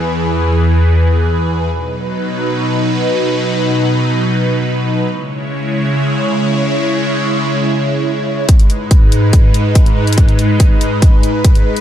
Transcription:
<<
  \new Staff \with { instrumentName = "Supersaw synth" } { \time 4/4 \key gis \minor \tempo 4 = 142 <e, e gis' b'>1 | <b, fis dis' b'>1~ | <b, fis dis' b'>1 | <cis gis e' cis''>1~ |
<cis gis e' cis''>1 | <gis, gis dis' b'>1~ | <gis, gis dis' b'>1 | }
  \new DrumStaff \with { instrumentName = "Drums" } \drummode { \time 4/4 r4 r4 r4 r4 | r4 r4 r4 r4 | r4 r4 r4 r4 | r4 r4 r4 r4 |
r4 r4 r4 r4 | <hh bd>16 hh16 hh8 <hh bd>8 hh8 <hh bd>8 hh8 <hh bd>16 hh8 hh32 hh32 | <hh bd>16 hh16 hh8 <hh bd>8 hh8 <hh bd>8 hh8 <hh bd>16 hh8 hh16 | }
>>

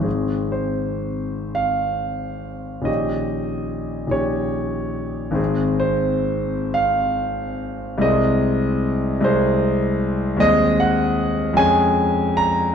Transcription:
<<
  \new Staff \with { instrumentName = "Grand piano" } { \time 6/8 \key aes \major \tempo 4. = 48 r8 c''4 f''4. | ees''4. des''4. | r8 c''4 f''4. | ees''4. c''4. |
\key des \major ees''8 ges''4 aes''4 bes''8 | }
  \new Staff \with { instrumentName = "Grand piano" } { \time 6/8 \key aes \major <aes,, ees c' aes'>2. | <bes,, ees des' g'>4. <bes,, ees des' g'>4. | <aes,, ees c' aes'>2. | <c, aes c' aes'>4. <c, aes c' aes'>4. |
\key des \major <ees, aes c' aes'>4. <f, aes des' aes'>4. | }
>>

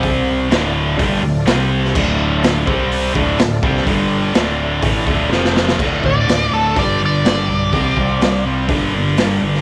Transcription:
<<
  \new Staff \with { instrumentName = "Lead electric guitar" } { \time 4/4 \key d \minor \tempo 4 = 125 r1 | r1 | r1 | r8 d''4 a'8 d''8 d''4.~ |
d''4. r2 r8 | }
  \new Staff \with { instrumentName = "Tonewheel organ" } { \time 4/4 \key d \minor <c' g' c''>4 <a d' f' d''>2 <c' g' c''>4 | <a d' f' d''>4. <c' g' c''>4 <a d' f' d''>4. | <d' g' d''>4 <a d' f' d''>2 <c' f' c''>4 | <a d' f' d''>2 <b d' g' d''>2 |
<c' f' g' f''>2 <bes d' g' d''>2 | }
  \new Staff \with { instrumentName = "Distorted electric guitar" } { \clef bass \time 4/4 \key d \minor <c g c'>4 <d, a, d>4 <g, d g>8 <d, a,>8 <c g c'>4 | <d, a, d>4. <c g c'>4 <d, a, d>8 <d, a,>8 <c g c'>8 | <g, d g>4 <d, a, d>4 <a, e a>8 <d, a, d>8 <f, c f>4 | <d, a, d>2 <g, d g>2 |
<c g c'>2 <g, d g>2 | }
  \new Staff \with { instrumentName = "Overdriven electric guitar" } { \clef bass \time 4/4 \key d \minor <c g c'>4 <d, a, d>4 <g, d g>8 <d, a,>8 <c g c'>4 | <d, a, d>4. <c g c'>4 <d, a, d>8 <d, a,>8 <c g c'>8 | <g, d g>4 <d, a, d>4 <a, e a>8 <d, a, d>8 <f, c f>4 | <d, a, d>8 <d, a,>8 <d, a,>8 <d, a, d>8 <g, d g>8 <g, d>8 <g, d g>8 <g, d>8 |
<c g c'>8 <c g>8 <c g>8 <c g c'>8 <g, d g>8 <g, d>8 <g, d g>8 <g, d>8 | }
  \new Staff \with { instrumentName = "Picked electric bass" } { \clef bass \time 4/4 \key d \minor c,4 d,,4 g,,8 d,,8 c,4 | d,,4. c,4 d,,8 d,,8 c,8 | g,,4 d,,4 a,,8 d,,8 f,,4 | d,,8 d,,8 d,,8 d,,8 g,,4 g,,8 b,,8 |
c,8 c,8 c,4 g,,4 g,,8 g,,8 | }
  \new DrumStaff \with { instrumentName = "Drums" } \drummode { \time 4/4 <hho bd>4 <hho sn>4 <hho bd>4 <hho sn>8. sn16 | <cymc bd>4 <hho sn>8 bd8 hho8 bd8 <hho sn>8 bd16 sn16 | <hho bd>4 <hho sn>4 <hho bd>8 bd8 sn16 sn16 sn16 sn16 | <cymc bd>8 bd8 <hho sn>4 <hho bd>4 <hho sn>4 |
<hho bd>8 bd8 <hho sn>4 <hho bd>4 <hho sn>8. sn16 | }
>>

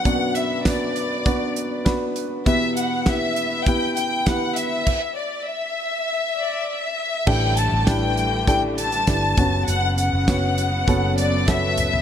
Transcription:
<<
  \new Staff \with { instrumentName = "Violin section" } { \time 4/4 \key e \dorian \tempo 4 = 100 fis''8 e''8 d''2 r4 | e''8 fis''8 e''4 g''8 g''8 fis''8 e''8~ | e''8 d''8 e''4. d''8 e''4 | g''8 a''8 g''4 g''8 a''4. |
fis''8 fis''2 d''8 e''4 | }
  \new Staff \with { instrumentName = "Upright piano" } { \time 4/4 \key e \dorian <b d' fis' b'>8 r8 <b d' fis' b'>8 r8 <b d' fis' b'>8 r8 <b d' fis' b'>8 r8 | <b e' g' b'>8 r8 <b e' g' b'>8 r8 <b e' g' b'>8 r8 <b e' g' b'>8 r8 | r1 | <d' e' g' a'>8 r8 <d' e' g' b'>8 r8 <d' e' g' a'>8 r8 <d' e' g' a'>8 <b cis' fis' b'>8~ |
<b cis' fis' b'>8 r8 <b cis' fis' b'>8 r8 <b cis' fis' a'>8 r8 <b cis' fis' a'>8 r8 | }
  \new Staff \with { instrumentName = "Upright piano" } { \clef bass \time 4/4 \key e \dorian <b,, fis,>1 | <e, b,>1 | r1 | <a, e>4. r2 cis8~ |
cis4 r2. | }
  \new Staff \with { instrumentName = "String section" } { \clef bass \time 4/4 \key e \dorian r1 | r1 | r1 | <d g a>2.~ <d g a>8 <cis fis b>8~ |
<cis fis b>1 | }
  \new Staff \with { instrumentName = "Fingered electric bass" } { \clef bass \time 4/4 \key e \dorian r1 | r1 | r1 | a,,8. a,,2~ a,,16 g,,8 fis,,8 |
fis,,8. fis,,4~ fis,,16 fis,,2 | }
  \new DrumStaff \with { instrumentName = "Drums" } \drummode { \time 4/4 <hh bd>8 hh8 <hh bd sn>8 hh8 <hh bd>8 hh8 <hh bd sn>8 hh8 | <hh bd>8 hh8 <hh bd sn>8 hh8 <hh bd>8 hh8 <hh bd sn>8 hh8 | <cymc bd>4 r4 r4 r4 | <cymc bd>8 hh8 <hh bd sn>8 hh8 <hh bd>8 hh16 hh16 <hh bd sn>8 <hh bd tomfh>8 |
hh8 hh8 <hh bd sn>8 hh8 <hh bd>8 hh8 <hh bd sn>8 <hh tomfh>16 tomfh16 | }
>>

